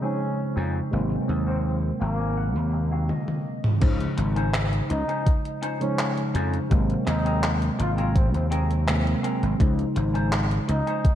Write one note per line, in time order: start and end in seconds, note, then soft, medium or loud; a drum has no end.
0.00 0.94 C#3 medium
0.00 0.02 F3 medium
0.00 0.88 F3 medium
0.00 0.03 G#3 medium
0.00 0.88 G#3 medium
0.00 0.94 C4 medium
0.00 0.20 C4 medium
0.00 0.46 C#4 medium
0.00 0.04 D#4 medium
0.00 0.20 D#4 medium
0.00 0.21 G#4 medium
0.00 0.89 C5 medium
0.04 0.89 D#4 medium
0.56 0.79 F2 medium
0.56 0.75 C4 medium
0.56 0.75 D#4 medium
0.56 0.75 G#4 medium
0.91 1.16 G#1 medium
0.91 3.04 C3 medium
0.91 3.05 F#3 medium
0.91 3.05 G#3 medium
0.91 3.06 A#3 medium
0.91 3.06 C4 loud
1.28 1.90 D#2 medium
1.28 muted clean electric guitar stroke medium
1.47 1.65 A#3 medium
1.47 1.58 C4 medium
1.47 1.65 C4 medium
1.47 1.65 F#4 medium
1.65 1.77 C4 medium
2.00 2.56 G#1 medium
2.00 2.44 A#3 medium
2.00 2.19 A#3 medium
2.00 2.20 C4 medium
2.00 2.20 F#4 medium
2.00 2.18 A#5 medium
2.20 2.36 G#5 medium
2.37 2.88 F#5 medium
2.56 3.09 D#2 medium
2.73 muted clean electric guitar stroke medium
2.92 3.09 A#3 medium
2.92 3.10 C4 medium
2.92 3.10 F#4 medium
2.92 3.08 F5 medium
3.09 3.78 D#5 medium
3.09 high tom medium
3.28 high tom medium
3.64 mid tom medium
3.80 4.05 C#2 loud
3.80 5.76 C#3 medium
3.80 5.76 F3 medium
3.80 5.77 G#3 medium
3.80 5.77 D#4 medium
3.80 5.77 C5 medium
3.80 kick loud
3.80 closed hi-hat medium
3.80 crash loud
4.00 closed hi-hat soft
4.17 4.80 G#1 medium
4.17 muted clean electric guitar stroke medium
4.17 closed hi-hat medium
4.36 4.54 C#4 medium
4.36 4.54 D#4 medium
4.36 4.54 F4 medium
4.36 4.54 C5 medium
4.36 closed hi-hat soft
4.54 clap loud
4.54 closed hi-hat medium
4.73 closed hi-hat soft
4.90 5.02 C#2 medium
4.90 5.34 D#4 medium
4.90 muted clean electric guitar stroke medium
4.90 closed hi-hat loud
5.08 5.26 C#4 medium
5.08 5.26 D#4 medium
5.08 5.27 F4 medium
5.08 5.27 C5 medium
5.08 closed hi-hat soft
5.26 kick loud
5.26 closed hi-hat medium
5.45 closed hi-hat soft
5.62 5.81 C#4 medium
5.62 5.81 D#4 medium
5.62 5.81 F4 medium
5.62 5.82 C5 loud
5.62 closed hi-hat loud
5.80 6.66 C#3 medium
5.80 6.67 F3 medium
5.80 6.67 G#3 medium
5.80 6.24 C#4 medium
5.80 6.68 D#4 medium
5.80 6.67 C5 medium
5.80 closed hi-hat soft
5.99 clap loud
5.99 closed hi-hat medium
6.17 closed hi-hat soft
6.34 6.58 F2 medium
6.34 6.53 C#4 medium
6.34 6.53 D#4 medium
6.34 6.54 F4 medium
6.34 6.54 C5 medium
6.34 closed hi-hat medium
6.54 closed hi-hat soft
6.70 6.94 G#1 loud
6.70 8.83 C3 loud
6.70 8.83 F#3 loud
6.70 8.84 G#3 medium
6.70 8.84 A#3 medium
6.70 8.84 C4 loud
6.70 kick loud
6.70 closed hi-hat medium
6.90 closed hi-hat soft
7.07 7.69 D#2 medium
7.07 7.51 D#4 loud
7.07 muted clean electric guitar stroke medium
7.07 clap medium
7.07 closed hi-hat loud
7.25 7.43 C4 medium
7.25 7.43 F#4 medium
7.25 7.43 G#4 medium
7.25 7.44 A#4 medium
7.25 closed hi-hat soft
7.43 clap loud
7.43 closed hi-hat medium
7.62 closed hi-hat soft
7.79 8.34 G#1 medium
7.79 7.91 F4 medium
7.79 muted clean electric guitar stroke medium
7.79 closed hi-hat medium
7.98 8.15 C4 medium
7.98 8.09 F4 medium
7.98 8.16 F#4 medium
7.98 8.16 G#4 medium
7.98 8.16 A#4 medium
7.98 closed hi-hat soft
8.16 8.28 C4 medium
8.16 kick loud
8.16 closed hi-hat medium
8.34 9.13 D#2 medium
8.34 8.46 C4 medium
8.34 closed hi-hat soft
8.51 8.70 C4 loud
8.51 8.70 F#4 medium
8.51 8.70 G#4 medium
8.51 8.71 A#4 loud
8.51 closed hi-hat loud
8.71 closed hi-hat soft
8.87 9.55 C3 medium
8.87 9.56 F#3 medium
8.87 9.56 G#3 medium
8.87 9.56 A#3 medium
8.87 9.56 C4 medium
8.87 clap loud
8.87 closed hi-hat medium
9.07 closed hi-hat soft
9.23 9.42 C4 loud
9.23 9.42 F#4 medium
9.23 9.43 G#4 medium
9.23 9.43 A#4 loud
9.23 closed hi-hat loud
9.43 9.54 G#1 medium
9.43 closed hi-hat soft
9.58 9.83 C#2 loud
9.58 11.15 C#3 medium
9.58 11.15 F3 medium
9.58 11.15 G#3 medium
9.58 11.15 D#4 medium
9.58 11.15 C5 medium
9.58 kick loud
9.58 closed hi-hat medium
9.79 closed hi-hat soft
9.96 10.58 G#1 medium
9.96 muted clean electric guitar stroke medium
9.96 closed hi-hat medium
10.14 10.32 C#4 medium
10.14 10.32 D#4 medium
10.14 10.33 F4 medium
10.14 10.33 C5 medium
10.14 closed hi-hat soft
10.32 clap loud
10.32 closed hi-hat medium
10.51 closed hi-hat soft
10.68 10.80 C#2 medium
10.68 11.12 D#4 medium
10.68 muted clean electric guitar stroke medium
10.68 closed hi-hat loud
10.87 11.05 C#4 medium
10.87 11.05 D#4 medium
10.87 11.05 F4 medium
10.87 11.05 C5 loud
10.87 closed hi-hat soft
11.05 kick loud
11.05 closed hi-hat medium